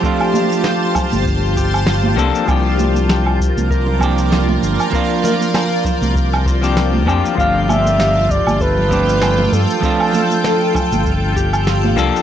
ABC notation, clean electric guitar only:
X:1
M:4/4
L:1/16
Q:"Swing 16ths" 1/4=98
K:C
V:1 name="Clean electric guitar"
[F,A,CDF]12- [F,A,CDF]2 [F,_B,CDA]2 | [F,_B,CDG]8- [F,B,CDG]2 [F,B,CDG]6 | [F,_B,CDF]8- [F,B,CDF]3 [F,B,CDG]3 [F,B,CDG]2 | [F,A,CDG]8- [F,A,CDG]2 [F,A,CDG]6 |
[F,A,CDF]12- [F,A,CDF]2 [F,_B,CDA]2 |]